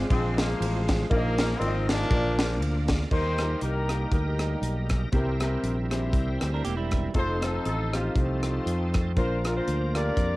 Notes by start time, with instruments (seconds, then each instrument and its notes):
Already playing: grand piano G#3 C4 F4 G#4 D5, tonewheel organ G#3 C4 F4
0.10 fingered electric bass A#1, horn section F3 G#3 C4, kick, ride
0.38 horn section F3 A#3, snare, ride
0.60 fingered electric bass A1, ride
0.88 kick, snare, ride
1.10 fingered electric bass A#1, grand piano A#2 A#3 D#4 F4 A#4 D5, horn section D#3 F3 A#3, tonewheel organ A#3 D4 F4, kick, ride
1.17 tonewheel organ D#4, grand piano D#5
1.38 snare, ride
1.59 fingered electric bass G#1, grand piano A#3 D#4 F4 A#4 D5, horn section C4, ride
1.67 grand piano D#5
1.88 horn section F3 A#3 D4, snare, ride
2.10 fingered electric bass A#1, grand piano A#2 A#3 D4 F4 A#4 D5, tonewheel organ A#3 C#4 F4, kick, ride
2.16 tonewheel organ D4
2.39 snare, ride
2.61 fingered electric bass D2, ride
2.88 kick, snare, ride
3.11 fingered electric bass D#2, grand piano D#3 A#3 D#4 G4 A#4, tonewheel organ G3 A#3 D#4 G#4, horn section D#4 G4 C5, kick, crash
3.18 tonewheel organ A#4
3.38 grand piano A#3 D#4 F4 A#4, cross-stick, closed hi-hat
3.46 grand piano G4
3.61 fingered electric bass C2, horn section D#4 G4 A#4, closed hi-hat
3.89 grand piano A#3 D#4 G4 A#4, cross-stick, closed hi-hat
4.12 fingered electric bass D2, horn section D#4 G4 A#4, kick, closed hi-hat
4.39 cross-stick, closed hi-hat
4.62 fingered electric bass B1, closed hi-hat
4.89 kick, cross-stick, closed hi-hat
5.12 fingered electric bass C2, grand piano C3 C4 E4 G4 A#4, tonewheel organ G3 C4 E4 A#4, kick, closed hi-hat
5.40 grand piano C4 E4 G4 A#4, cross-stick, closed hi-hat
5.63 fingered electric bass A#1, closed hi-hat
5.90 grand piano C4 E4 G4 C5, cross-stick, closed hi-hat
6.13 fingered electric bass C2, kick, closed hi-hat
6.41 fingered electric bass D2, cross-stick, closed hi-hat
6.54 clean electric guitar D4 A#4
6.64 fingered electric bass E1, clean electric guitar A#3 G4, closed hi-hat
6.77 clean electric guitar G3 E4
6.91 kick, cross-stick, closed hi-hat
7.14 fingered electric bass F1, tonewheel organ F3 C4 D#4 A4, grand piano C4 D#4 F4 A4, horn section D#4 A4 C5, kick, closed hi-hat
7.42 grand piano C4 D#4 F4 C5, horn section A4, cross-stick, closed hi-hat
7.65 fingered electric bass A1, horn section A4, closed hi-hat
7.93 grand piano C4 D#4 F4 G4, horn section F4, cross-stick, closed hi-hat
8.16 fingered electric bass C2, horn section A3 C4 F4, kick, closed hi-hat
8.43 cross-stick, closed hi-hat
8.66 fingered electric bass F2, closed hi-hat
8.94 kick, cross-stick, closed hi-hat
9.16 fingered electric bass A#1, grand piano A#2 A#3 D4 F4 A#4, tonewheel organ F3 A#3 C4 A#4, horn section F4 C5, kick, closed hi-hat
9.23 tonewheel organ D4
9.44 grand piano A#3 D4 F4 A#4, horn section A#4, cross-stick, closed hi-hat
9.57 horn section F4 C5
9.68 fingered electric bass D2, closed hi-hat
9.94 grand piano A#3 D4 F4 G4, horn section F4 A#4 D5, cross-stick, closed hi-hat
10.17 fingered electric bass F2, kick, closed hi-hat